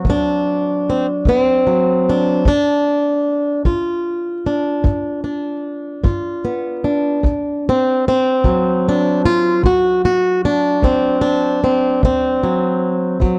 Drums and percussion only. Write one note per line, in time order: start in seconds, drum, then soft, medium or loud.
0.05 kick medium
1.25 kick medium
2.45 kick medium
3.65 kick medium
4.84 kick medium
6.05 kick medium
7.24 kick medium
8.44 kick medium
9.64 kick medium
10.83 kick medium
12.03 kick medium
13.22 kick medium